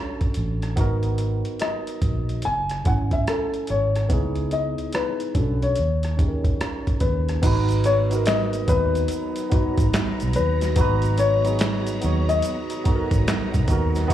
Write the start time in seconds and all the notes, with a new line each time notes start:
Already playing: C#4 D4 F#4 A4 C#5
0.21 kick, closed hi-hat
0.34 A1, closed hi-hat
0.62 cross-stick, closed hi-hat
0.76 G#1 B3 D#4 F#4, kick, closed hi-hat
0.81 A#4
1.03 closed hi-hat
1.18 closed hi-hat
1.45 closed hi-hat
1.59 D#5, cross-stick, closed hi-hat
1.87 closed hi-hat
2.02 A#1, kick, closed hi-hat
2.29 closed hi-hat
2.42 F#1 G#5, closed hi-hat
2.69 cross-stick, closed hi-hat
2.84 G#1 A3 C#4 E4 F#5, kick, closed hi-hat
2.89 G#5
3.11 E5, kick, closed hi-hat
3.27 A4, cross-stick, closed hi-hat
3.54 closed hi-hat
3.67 G#1 C#5, closed hi-hat
3.96 cross-stick, closed hi-hat
4.09 C#2 B3 D#4 E4, kick, closed hi-hat
4.13 G#4
4.35 closed hi-hat
4.51 D#5, closed hi-hat
4.78 closed hi-hat
4.92 B4, cross-stick, closed hi-hat
5.20 closed hi-hat
5.34 B1 C#4 D4 F#4, kick, closed hi-hat
5.39 A4
5.62 C#5, closed hi-hat
5.76 D#2, closed hi-hat
6.03 cross-stick, closed hi-hat
6.17 C#4 D#4 G4, kick, closed hi-hat
6.22 G#4
6.28 A#4
6.44 kick, closed hi-hat
6.61 cross-stick, closed hi-hat
6.87 kick, closed hi-hat
7.00 D#2 B4, kick, closed hi-hat
7.29 cross-stick, closed hi-hat
7.42 G#1 F#3 B3 D#4 F#4 A#5, kick, closed hi-hat, crash, shaker
7.47 B4
7.69 closed hi-hat, shaker
7.84 C#5, closed hi-hat, shaker
8.10 B3 D#4 F#4, closed hi-hat, shaker
8.15 A#4
8.26 D#5, finger snap, snare, closed hi-hat, shaker
8.29 finger snap
8.53 closed hi-hat, shaker
8.67 D#2 B3 D#4 F#4 B4, kick, closed hi-hat, shaker
8.72 B4
8.95 closed hi-hat, shaker
9.08 closed hi-hat, shaker
9.36 closed hi-hat, shaker
9.50 B3 D#4 F#4, muted fingered electric bass stroke, kick, closed hi-hat
9.55 B4
9.77 G#1, kick, closed hi-hat, shaker
9.94 finger snap, snare, closed hi-hat, shaker
10.20 B1, closed hi-hat, shaker
10.33 B4, closed hi-hat, shaker
10.38 D#2
10.61 snare, closed hi-hat, shaker
10.76 G#1 B3 D#4 F#4, kick, closed hi-hat, shaker
10.81 B4
11.02 closed hi-hat, shaker
11.18 C#5, closed hi-hat, shaker
11.44 B3 D#4 F#4, closed hi-hat, shaker
11.49 G#4
11.59 finger snap, snare, closed hi-hat, shaker
11.87 closed hi-hat, shaker
12.01 D#2 B3 D#4 F#4, closed hi-hat, shaker
12.06 C#5
12.29 D#5, closed hi-hat, shaker
12.42 closed hi-hat, shaker
12.70 closed hi-hat, shaker
12.84 B3 D#4 F#4, muted fingered electric bass stroke, kick, closed hi-hat
12.89 A4
12.96 A#4
13.11 G#1, kick, closed hi-hat, shaker
13.28 finger snap, snare, closed hi-hat, shaker
13.54 B1, kick, closed hi-hat, shaker
13.67 D#2 B3 D#4 F#4, kick, closed hi-hat, shaker
13.72 A#4
13.95 snare, closed hi-hat, shaker
14.08 B3 D#4, kick, closed hi-hat, shaker